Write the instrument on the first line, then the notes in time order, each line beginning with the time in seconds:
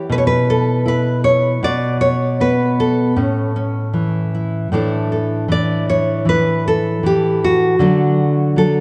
nylon-string guitar
Already playing: E3 E4 G4 C#5
0.09 B2 B4
0.18 C#5
0.27 B4
0.50 A4
0.86 E4 B4
1.24 C#5
1.63 B2 D5
2.01 C#5
2.40 B3 B4
2.80 A4
3.16 A2 C#4
3.56 C#4
3.93 E3
4.35 E4
4.72 A2 E3 D4 E4 A4
5.12 A4
5.48 E3 D5
5.89 C#5
6.25 E3 B4
6.68 A4
7.03 E3 G4
7.44 F#4
7.79 D3 F#3 A3 D4
8.56 F#3 A4